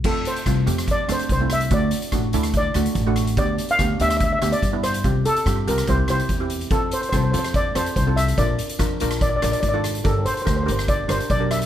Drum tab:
CC |x---------------|----------------|----------------|----------------|
HH |--xxx-xxx-xxx-xx|x-xxx-xxx-xxx-xx|x-xxx-xxx-xxx-xx|x-xxx-xxx-xxx-xx|
SD |----r--r--r---r-|----r--r--r---r-|----r--r--r---r-|----r--r--r-----|
BD |o---o---o---o---|o---o---o---o---|o---o---o---o---|o---o---o---o---|

CC |----------------|----------------|----------------|
HH |x-xxx-xxx-xxx-xx|x-xxx-xxx-xxx-xx|x-xxx-xxx-xxx-xx|
SD |----r--r--r---r-|----r--r--r---r-|----r--r--r---r-|
BD |o---o---o---o---|o---o---o---o---|o---o---o---o---|